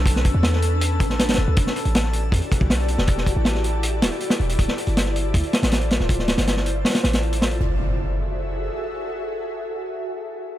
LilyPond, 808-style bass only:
\new Staff \with { instrumentName = "808-style bass" } { \clef bass \time 4/4 \key fis \phrygian \tempo 4 = 159 b,,8. e,4.~ e,16 a,,8. fis,,16 fis,,16 d,16 | e,,16 r8 a,,4~ a,,16 e,16 r8 b,,4 e,,16~ | e,,8. a,,4.~ a,,16 d,,16 r8. e,,8 | d,,16 r8 g,,4~ g,,16 d,16 r8 a,,4 d,,16~ |
d,,8. g,,4~ g,,16 r8 a,,4. | fis,,2. r4 | r1 | }